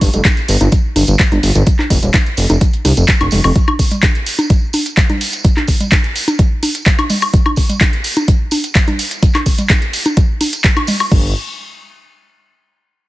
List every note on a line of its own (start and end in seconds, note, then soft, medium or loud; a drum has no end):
0.01 0.09 G1 medium
0.01 kick medium
0.01 open hi-hat loud
0.01 tambourine medium
0.13 0.21 F1 medium
0.13 closed hi-hat medium
0.13 tambourine medium
0.13 low conga medium
0.25 kick loud
0.25 clap loud
0.25 closed hi-hat medium
0.25 tambourine soft
0.25 high conga medium
0.37 closed hi-hat soft
0.48 0.56 G1 loud
0.48 open hi-hat loud
0.48 tambourine medium
0.60 0.68 G1 medium
0.60 closed hi-hat medium
0.60 tambourine medium
0.60 high conga loud
0.72 kick loud
0.72 closed hi-hat medium
0.72 tambourine soft
0.96 1.03 G1 medium
0.96 open hi-hat loud
0.96 tambourine medium
0.96 high conga medium
1.07 1.15 G1 medium
1.07 closed hi-hat medium
1.07 tambourine medium
1.19 kick loud
1.19 clap loud
1.19 closed hi-hat medium
1.19 tambourine soft
1.32 1.39 G1 medium
1.32 closed hi-hat soft
1.32 high conga loud
1.32 low conga medium
1.43 1.51 G1 medium
1.43 open hi-hat loud
1.43 tambourine medium
1.55 1.62 G1 medium
1.55 closed hi-hat soft
1.55 tambourine soft
1.66 kick loud
1.66 closed hi-hat medium
1.66 tambourine soft
1.79 clap soft
1.79 high conga medium
1.90 1.98 F1 medium
1.90 kick medium
1.90 open hi-hat loud
1.90 tambourine medium
2.02 2.10 D#1 medium
2.02 closed hi-hat soft
2.02 tambourine soft
2.02 low conga medium
2.14 kick loud
2.14 clap loud
2.14 closed hi-hat medium
2.14 tambourine soft
2.14 high conga medium
2.26 closed hi-hat soft
2.37 2.45 F1 medium
2.37 open hi-hat loud
2.37 tambourine medium
2.50 2.57 F1 medium
2.50 closed hi-hat medium
2.50 tambourine medium
2.50 high conga medium
2.61 kick loud
2.61 closed hi-hat medium
2.61 tambourine soft
2.73 closed hi-hat soft
2.85 2.92 C2 medium
2.85 open hi-hat loud
2.85 tambourine loud
2.85 high conga medium
2.97 3.04 F1 medium
2.97 closed hi-hat soft
2.97 tambourine medium
3.08 kick loud
3.08 clap loud
3.08 closed hi-hat medium
3.08 tambourine soft
3.21 3.28 F1 medium
3.21 closed hi-hat soft
3.21 high conga medium
3.21 high woodblock medium
3.31 3.40 F1 medium
3.31 open hi-hat loud
3.31 tambourine loud
3.31 low conga medium
3.44 3.51 F1 medium
3.44 open hi-hat medium
3.44 tambourine medium
3.44 high woodblock medium
3.55 kick loud
3.55 closed hi-hat medium
3.55 tambourine soft
3.68 high conga medium
3.68 high woodblock medium
3.79 kick medium
3.79 open hi-hat loud
3.79 tambourine medium
3.91 closed hi-hat medium
3.91 tambourine medium
3.91 low conga medium
4.03 kick loud
4.03 clap loud
4.03 closed hi-hat medium
4.03 tambourine soft
4.03 high conga medium
4.15 closed hi-hat soft
4.26 open hi-hat loud
4.26 tambourine loud
4.39 closed hi-hat medium
4.39 tambourine medium
4.39 high conga medium
4.50 kick loud
4.50 closed hi-hat medium
4.50 tambourine soft
4.73 open hi-hat loud
4.73 tambourine medium
4.73 high conga medium
4.86 closed hi-hat soft
4.86 tambourine soft
4.97 kick loud
4.97 clap loud
4.97 closed hi-hat medium
4.97 tambourine soft
5.10 closed hi-hat soft
5.10 high conga medium
5.10 low conga medium
5.21 open hi-hat loud
5.21 tambourine medium
5.32 closed hi-hat soft
5.32 tambourine medium
5.44 kick loud
5.44 closed hi-hat medium
5.44 tambourine soft
5.57 clap soft
5.57 high conga medium
5.67 kick medium
5.67 open hi-hat loud
5.67 tambourine medium
5.80 closed hi-hat medium
5.80 tambourine soft
5.80 low conga medium
5.92 kick loud
5.92 clap loud
5.92 closed hi-hat medium
5.92 tambourine soft
5.92 high conga medium
6.04 closed hi-hat soft
6.16 open hi-hat loud
6.16 tambourine medium
6.28 closed hi-hat medium
6.28 tambourine medium
6.28 high conga medium
6.39 kick loud
6.39 closed hi-hat medium
6.39 tambourine soft
6.63 open hi-hat loud
6.63 tambourine medium
6.63 high conga medium
6.74 closed hi-hat medium
6.74 tambourine medium
6.86 kick loud
6.86 clap loud
6.86 closed hi-hat medium
6.86 tambourine soft
6.99 closed hi-hat soft
6.99 high conga medium
6.99 high woodblock medium
7.09 open hi-hat loud
7.09 tambourine medium
7.09 low conga medium
7.21 open hi-hat medium
7.21 tambourine medium
7.21 high woodblock medium
7.33 kick loud
7.33 closed hi-hat medium
7.33 tambourine soft
7.46 high conga medium
7.46 high woodblock medium
7.56 kick medium
7.56 open hi-hat loud
7.56 tambourine medium
7.69 closed hi-hat medium
7.69 tambourine medium
7.69 low conga medium
7.80 kick loud
7.80 clap loud
7.80 closed hi-hat medium
7.80 tambourine soft
7.80 high conga medium
7.93 closed hi-hat soft
8.04 open hi-hat loud
8.04 tambourine medium
8.17 closed hi-hat medium
8.17 tambourine soft
8.17 high conga medium
8.28 kick loud
8.28 closed hi-hat medium
8.28 tambourine soft
8.51 open hi-hat loud
8.51 tambourine medium
8.51 high conga medium
8.64 closed hi-hat medium
8.64 tambourine soft
8.75 kick loud
8.75 clap loud
8.75 closed hi-hat medium
8.75 tambourine soft
8.88 closed hi-hat soft
8.88 high conga medium
8.88 low conga medium
8.99 open hi-hat loud
8.99 tambourine medium
9.11 closed hi-hat medium
9.11 tambourine soft
9.23 kick loud
9.23 closed hi-hat medium
9.23 tambourine soft
9.35 clap soft
9.35 closed hi-hat soft
9.35 high conga loud
9.35 high woodblock medium
9.46 kick medium
9.46 open hi-hat loud
9.46 tambourine loud
9.58 closed hi-hat medium
9.58 tambourine medium
9.58 low conga medium
9.70 kick loud
9.70 clap loud
9.70 closed hi-hat medium
9.70 tambourine soft
9.70 high conga medium
9.82 closed hi-hat soft
9.93 open hi-hat loud
9.93 tambourine medium
10.06 closed hi-hat medium
10.06 tambourine soft
10.06 high conga medium
10.17 kick loud
10.17 closed hi-hat medium
10.17 tambourine soft
10.41 open hi-hat loud
10.41 tambourine medium
10.41 high conga medium
10.53 closed hi-hat medium
10.53 tambourine soft
10.64 kick loud
10.64 clap loud
10.64 closed hi-hat medium
10.77 closed hi-hat soft
10.77 high conga loud
10.77 high woodblock medium
10.87 open hi-hat loud
10.87 tambourine medium
10.87 low conga medium
11.00 open hi-hat medium
11.00 tambourine soft
11.00 high woodblock medium
11.12 11.34 G1 medium
11.12 kick loud
11.12 crash medium